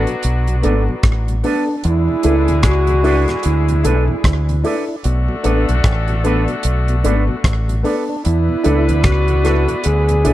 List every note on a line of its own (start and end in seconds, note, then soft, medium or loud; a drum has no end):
0.00 1.40 F#3 medium
0.00 1.40 B3 medium
0.00 1.40 D4 medium
0.00 1.40 F#4 medium
0.07 0.16 B2 medium
0.07 0.16 F#3 medium
0.07 closed hi-hat soft
0.23 0.62 B1 medium
0.23 closed hi-hat medium
0.47 0.56 B2 medium
0.47 0.56 F#3 medium
0.47 closed hi-hat soft
0.62 0.87 G#1 medium
0.62 0.75 A3 medium
0.62 0.85 B3 medium
0.62 0.76 B3 medium
0.62 0.85 D4 medium
0.62 0.82 D4 medium
0.62 0.76 D4 medium
0.62 0.86 A4 medium
0.62 0.83 A4 medium
0.62 0.83 B4 medium
0.62 closed hi-hat medium
0.89 0.96 B2 medium
0.89 0.96 F#3 medium
1.03 1.42 A1 medium
1.03 kick loud
1.03 cross-stick loud
1.03 closed hi-hat medium
1.28 1.36 B2 medium
1.28 1.36 F#3 medium
1.28 closed hi-hat soft
1.43 1.55 A3 medium
1.43 1.66 B3 medium
1.43 1.56 B3 medium
1.43 1.66 D4 medium
1.43 1.63 D4 medium
1.43 1.56 D4 medium
1.43 1.83 D4 medium
1.43 1.66 A4 medium
1.43 1.63 A4 medium
1.43 1.64 B4 medium
1.43 open hi-hat medium
1.68 1.76 B3 medium
1.68 1.76 D4 medium
1.84 2.07 E2 loud
1.84 4.60 G#3 medium
1.84 4.60 D4 medium
1.84 4.61 E4 medium
1.84 2.61 E4 loud
1.84 4.60 G#4 medium
1.84 closed hi-hat medium
2.09 2.16 E2 medium
2.09 2.16 B2 medium
2.23 2.47 C#2 medium
2.23 2.36 A3 medium
2.23 2.46 D4 medium
2.23 2.43 D4 medium
2.23 2.36 D4 medium
2.23 2.46 E4 medium
2.23 2.36 E4 medium
2.23 2.46 A4 loud
2.23 2.43 A4 medium
2.23 2.44 B4 medium
2.23 closed hi-hat medium
2.48 2.63 D2 medium
2.48 2.56 E2 medium
2.48 2.56 B2 medium
2.48 closed hi-hat soft
2.63 3.25 C#2 medium
2.63 3.46 F#4 loud
2.63 kick loud
2.63 cross-stick loud
2.63 closed hi-hat medium
2.87 2.96 E2 medium
2.87 2.96 B2 medium
2.87 2.95 E4 soft
2.87 2.95 A4 soft
2.87 closed hi-hat soft
3.03 3.16 A3 medium
3.03 3.26 D4 medium
3.03 3.23 D4 medium
3.03 3.16 D4 medium
3.03 3.26 E4 medium
3.03 3.16 E4 medium
3.03 3.26 A4 medium
3.03 3.23 A4 medium
3.03 3.24 B4 loud
3.03 open hi-hat soft
3.28 3.36 E2 medium
3.28 3.36 B2 medium
3.28 cross-stick medium
3.28 closed hi-hat soft
3.43 3.83 D2 medium
3.43 4.65 E4 medium
3.43 closed hi-hat medium
3.68 3.76 E2 medium
3.68 3.76 B2 medium
3.68 closed hi-hat soft
3.83 4.08 B1 medium
3.83 3.95 A3 medium
3.83 4.06 D4 medium
3.83 3.96 D4 medium
3.83 4.03 D4 medium
3.83 4.06 E4 medium
3.83 3.96 E4 medium
3.83 4.06 A4 loud
3.83 4.04 A4 medium
3.83 4.04 B4 medium
3.83 closed hi-hat medium
4.08 4.16 E2 medium
4.08 4.16 B2 medium
4.24 4.62 D2 medium
4.24 kick loud
4.24 cross-stick loud
4.24 closed hi-hat medium
4.49 4.56 E2 medium
4.49 4.56 B2 medium
4.49 closed hi-hat soft
4.63 4.76 A3 medium
4.63 4.86 D4 medium
4.63 4.83 D4 medium
4.63 4.76 D4 medium
4.63 4.86 E4 medium
4.63 4.76 E4 medium
4.63 4.86 A4 loud
4.63 4.84 A4 medium
4.63 4.84 B4 medium
4.63 open hi-hat medium
4.88 4.96 D4 medium
4.88 4.96 E4 medium
5.04 5.27 B1 loud
5.04 7.80 A3 medium
5.04 7.80 D4 medium
5.04 7.81 F#4 medium
5.04 7.80 A4 medium
5.04 closed hi-hat medium
5.29 5.36 B2 medium
5.29 5.36 F#3 medium
5.43 5.67 A1 medium
5.43 5.56 A3 medium
5.43 5.66 B3 medium
5.43 5.56 B3 medium
5.43 5.66 D4 medium
5.43 5.63 D4 medium
5.43 5.56 D4 medium
5.43 5.66 A4 loud
5.43 5.64 A4 medium
5.43 5.64 B4 medium
5.43 closed hi-hat medium
5.69 5.84 B1 medium
5.69 5.76 B2 medium
5.69 5.76 F#3 medium
5.69 closed hi-hat soft
5.84 6.45 A1 medium
5.84 kick loud
5.84 cross-stick loud
5.84 closed hi-hat medium
6.08 6.16 B2 medium
6.08 6.16 F#3 medium
6.08 6.15 D4 soft
6.08 6.15 A4 soft
6.08 closed hi-hat soft
6.24 6.36 A3 medium
6.24 6.46 B3 medium
6.24 6.36 B3 medium
6.24 6.43 D4 medium
6.24 6.36 D4 medium
6.24 6.47 D4 medium
6.24 6.47 A4 loud
6.24 6.44 A4 medium
6.24 6.44 B4 medium
6.24 closed hi-hat medium
6.48 6.56 B2 medium
6.48 6.56 F#3 medium
6.48 closed hi-hat medium
6.63 7.03 B1 medium
6.63 closed hi-hat medium
6.88 6.96 B2 medium
6.88 6.96 F#3 medium
6.88 closed hi-hat soft
7.04 7.28 G#1 medium
7.04 7.16 A3 medium
7.04 7.26 B3 medium
7.04 7.16 B3 medium
7.04 7.23 D4 medium
7.04 7.26 D4 medium
7.04 7.16 D4 medium
7.04 7.27 A4 medium
7.04 7.24 A4 medium
7.04 7.24 B4 medium
7.04 closed hi-hat medium
7.28 7.36 B2 medium
7.28 7.36 F#3 medium
7.44 7.83 A1 medium
7.44 kick loud
7.44 cross-stick loud
7.44 closed hi-hat medium
7.68 7.76 B2 medium
7.68 7.76 F#3 medium
7.68 closed hi-hat soft
7.83 7.96 A3 medium
7.83 8.06 B3 medium
7.83 7.96 B3 medium
7.83 8.06 D4 medium
7.83 8.03 D4 medium
7.83 7.96 D4 medium
7.83 8.23 D4 medium
7.83 8.06 A4 medium
7.83 8.04 A4 medium
7.83 8.04 B4 medium
7.83 open hi-hat medium
8.09 8.16 B3 medium
8.09 8.17 D4 medium
8.24 8.48 E2 loud
8.24 10.33 B3 medium
8.24 10.33 D4 medium
8.24 10.33 E4 medium
8.24 9.05 E4 medium
8.24 10.33 B4 medium
8.24 closed hi-hat medium
8.49 8.56 E2 medium
8.49 8.56 B2 medium
8.63 8.88 C#2 medium
8.63 8.76 A3 medium
8.63 8.86 D4 medium
8.63 8.83 D4 medium
8.63 8.76 D4 medium
8.63 8.86 E4 medium
8.63 8.76 E4 medium
8.63 8.87 A4 loud
8.63 8.84 A4 medium
8.63 8.84 B4 medium
8.63 closed hi-hat medium
8.89 9.04 D2 medium
8.89 8.96 E2 medium
8.89 8.96 B2 medium
8.89 closed hi-hat soft
9.03 9.65 C#2 medium
9.03 9.83 F#4 medium
9.03 kick loud
9.03 cross-stick loud
9.03 closed hi-hat medium
9.28 9.36 E2 medium
9.28 9.36 B2 medium
9.28 9.35 E4 soft
9.28 9.35 A4 soft
9.28 closed hi-hat soft
9.44 9.56 A3 medium
9.44 9.63 D4 medium
9.44 9.66 D4 medium
9.44 9.56 D4 medium
9.44 9.66 E4 medium
9.44 9.56 E4 medium
9.44 9.63 A4 medium
9.44 9.67 A4 medium
9.44 9.64 B4 medium
9.44 cross-stick medium
9.44 closed hi-hat medium
9.68 9.76 E2 medium
9.68 9.76 B2 medium
9.68 closed hi-hat soft
9.83 10.23 D2 medium
9.83 10.33 G#4 loud
9.83 closed hi-hat loud
10.09 10.16 E2 medium
10.09 10.16 B2 medium
10.09 closed hi-hat medium
10.24 10.33 B1 medium
10.24 10.33 A3 medium
10.24 10.33 D4 medium
10.24 10.33 E4 medium
10.24 10.33 A4 medium
10.24 10.33 B4 medium
10.24 closed hi-hat medium